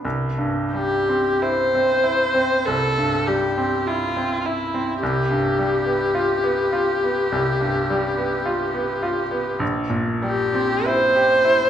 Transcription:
0.05 2.63 C2 soft
0.38 0.95 G2 soft
0.73 1.29 G3 soft
0.73 1.44 G4 medium
1.09 1.62 C4 soft
1.42 1.93 E4 soft
1.42 2.67 C5 medium
1.75 2.24 C4 soft
2.04 2.53 E4 soft
2.34 2.84 C4 soft
2.65 4.98 C2 soft
2.65 3.29 A4 medium
2.98 3.45 G2 soft
3.27 3.75 G3 soft
3.27 3.89 G4 medium
3.57 4.05 C4 soft
3.87 4.34 E4 soft
3.87 4.47 F4 medium
4.17 4.62 C4 soft
4.45 5.00 E4 medium
4.45 4.90 E4 soft
4.74 5.02 C4 soft
5.01 7.28 C2 soft
5.01 9.57 G4 medium
5.30 5.74 G2 soft
5.59 6.03 G3 soft
5.86 6.32 B3 soft
6.15 6.61 F4 soft
6.44 6.91 B3 soft
6.73 7.20 F4 soft
7.04 7.50 B3 soft
7.32 9.58 C2 soft
7.61 8.06 G2 soft
7.90 8.35 G3 soft
8.17 8.63 B3 soft
8.46 8.92 F4 soft
8.74 9.20 B3 soft
9.03 9.49 F4 soft
9.31 9.61 B3 soft
9.60 11.70 A#1 medium
9.90 10.42 A#2 soft
10.23 10.74 G3 soft
10.23 10.88 G4 medium
10.54 11.04 C4 soft
10.86 11.33 E4 soft
10.86 11.70 C5 medium
11.16 11.61 G4 soft
11.45 11.70 E4 soft

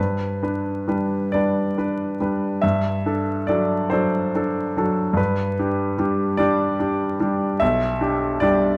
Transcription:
0.00 0.41 G2 soft
0.00 0.42 B4 soft
0.43 0.84 D4 soft
0.43 0.84 B4 soft
0.88 1.29 G3 soft
0.88 1.29 D4 soft
0.88 1.30 B4 soft
1.32 1.74 G3 soft
1.32 1.74 D4 soft
1.32 1.75 B4 soft
1.32 2.62 D5 medium
1.78 2.17 D4 soft
1.78 2.17 B4 soft
2.20 2.59 G3 soft
2.20 2.59 D4 soft
2.20 2.59 B4 soft
2.62 3.04 G2 soft
2.62 3.48 E5 medium
3.06 3.45 D4 soft
3.06 3.45 A4 soft
3.47 3.88 F#3 soft
3.47 3.88 D4 soft
3.47 3.88 A4 soft
3.47 3.91 D5 medium
3.90 4.30 F#3 soft
3.90 4.31 D4 soft
3.90 4.31 A4 soft
3.90 5.17 C5 medium
4.35 4.73 D4 soft
4.35 4.73 A4 soft
4.77 5.14 F#3 soft
4.77 5.14 D4 soft
4.77 5.14 A4 soft
5.13 5.54 G2 soft
5.13 6.38 B4 medium
5.59 5.94 D4 soft
5.59 5.95 G4 soft
5.98 6.34 G3 soft
5.98 6.35 D4 soft
5.98 6.35 G4 soft
6.37 6.75 G3 soft
6.37 6.75 D4 soft
6.37 6.76 G4 soft
6.37 7.61 D5 medium
6.80 7.16 D4 soft
6.80 7.17 G4 soft
7.20 7.57 G3 soft
7.20 7.57 D4 soft
7.20 7.57 G4 soft
7.60 8.01 B1 medium
7.60 8.41 E5 medium
8.01 8.38 D4 soft
8.01 8.38 G4 soft
8.40 8.77 G3 soft
8.40 8.77 D4 soft
8.40 8.77 G4 soft
8.40 8.77 D5 medium

